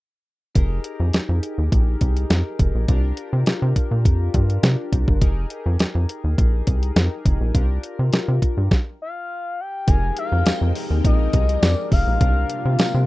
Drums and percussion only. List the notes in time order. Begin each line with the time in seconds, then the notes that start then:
0.55 kick, closed hi-hat
0.84 closed hi-hat
1.13 snare, closed hi-hat
1.43 closed hi-hat
1.72 kick, closed hi-hat
2.01 kick, closed hi-hat
2.17 closed hi-hat
2.30 snare, closed hi-hat
2.59 kick, closed hi-hat
2.88 kick, closed hi-hat
3.17 closed hi-hat
3.46 snare, closed hi-hat
3.76 kick, closed hi-hat
4.05 kick, closed hi-hat
4.34 kick, closed hi-hat
4.50 closed hi-hat
4.63 snare, closed hi-hat
4.93 kick, closed hi-hat
5.08 kick
5.21 kick, closed hi-hat
5.50 closed hi-hat
5.79 snare, closed hi-hat
6.09 closed hi-hat
6.38 kick, closed hi-hat
6.67 kick, closed hi-hat
6.83 closed hi-hat
6.96 snare, closed hi-hat
7.26 kick, closed hi-hat
7.55 kick, closed hi-hat
7.83 closed hi-hat
8.13 snare, closed hi-hat
8.42 kick, closed hi-hat
8.71 kick, snare
9.88 kick, closed hi-hat
10.17 closed hi-hat
10.46 snare, closed hi-hat, tambourine
10.75 open hi-hat
11.05 kick, closed hi-hat
11.33 kick, closed hi-hat
11.49 closed hi-hat
11.63 snare, closed hi-hat, tambourine
11.92 kick, open hi-hat
12.21 kick, closed hi-hat
12.50 closed hi-hat
12.79 snare, closed hi-hat, tambourine